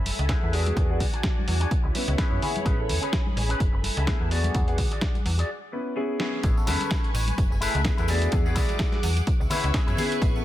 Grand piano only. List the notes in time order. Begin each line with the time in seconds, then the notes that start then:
0.29 A3 B3 E4 G#4
0.53 B3 D4 F#4 G#4
0.77 B3 D4 F#4 G#4
0.90 B3 D4 F#4 G#4
1.94 B3 C#4 E4 B4
2.18 B3 C#4 E4 G#4
2.42 B3 C#4 E4 G#4
2.66 B3 C#4 E4 G#4
2.79 B3 C#4 E4 A4
4.07 A3 B3 E4 G#4
4.31 B3 D4 F#4 G#4
4.54 B3 D4 F#4 G#4
4.67 B3 D4 F#4 G#4
5.72 B3 C#4 E4 B4
5.96 B3 C#4 E4 G#4
6.19 B3 C#4 E4 G#4
6.43 B3 C#4 E4 G#4
6.56 B3 C#4 E4 A4
7.85 A3 B3 E4 G#4
8.09 B3 D4 F#4 G#4
8.32 B3 D4 F#4 G#4
8.46 B3 D4 F#4 G#4
9.51 B3 C#4 E4 B4
9.74 B3 C#4 E4 G#4
9.98 B3 C#4 E4 G#4
10.21 B3 C#4 E4 G#4
10.35 B3 C#4 E4 A4